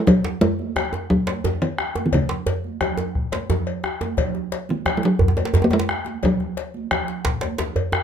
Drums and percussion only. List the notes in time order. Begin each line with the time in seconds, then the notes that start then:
0.07 bombo low, cowbell, djembe slap, low conga, djembe bass
0.24 djembe slap, djembe tone
0.41 cowbell, djembe slap, djembe bass
0.59 high conga
0.76 bombo rim, cowbell, djembe tone, djembe bass, low conga
0.93 djembe slap, djembe tone
1.11 bombo rim, bombo low
1.27 bombo rim, cowbell, djembe slap, high conga, djembe tone
1.44 bombo rim, djembe slap, djembe bass, low conga
1.62 cowbell
1.78 bombo rim, djembe tone
1.96 djembe slap, djembe tone, high conga
2.12 bombo low, cowbell, djembe slap, djembe bass, low conga
2.29 djembe slap
2.46 cowbell, djembe slap, djembe bass
2.64 high conga
2.81 bombo rim, cowbell, djembe tone, djembe bass, low conga
2.97 djembe slap, djembe tone
3.15 bombo rim, bombo low
3.32 bombo rim, cowbell, djembe slap, djembe tone, high conga
3.50 bombo rim, djembe slap, djembe bass, low conga
3.67 cowbell
3.84 bombo rim, djembe tone
4.01 djembe slap, djembe tone, high conga
4.17 bombo low, cowbell, djembe slap, djembe bass, low conga
4.35 djembe tone
4.52 cowbell, djembe slap
4.69 high conga
4.86 bombo rim, cowbell, djembe tone, djembe bass, low conga
5.03 djembe slap
5.19 bombo rim, bombo low, djembe bass
5.28 djembe tone
5.37 bombo rim, cowbell, djembe slap, djembe tone, high conga
5.45 djembe slap
5.54 bombo rim, djembe slap, djembe bass, low conga
5.62 djembe tone
5.71 cowbell, djembe tone
5.79 djembe slap
5.89 bombo rim, djembe tone
6.05 djembe slap, high conga
6.23 bombo rim, bombo low, cowbell, djembe slap, low conga, djembe bass
6.40 bombo rim, djembe tone
6.57 cowbell, djembe slap
6.74 djembe slap, high conga
6.91 bombo rim, cowbell, high conga, djembe tone, low conga, djembe bass
7.08 djembe slap
7.25 bombo low, djembe slap, high conga
7.41 cowbell, djembe slap, high conga, djembe tone
7.58 djembe slap, high conga, djembe bass, low conga
7.76 cowbell, djembe bass
7.92 bombo rim, djembe tone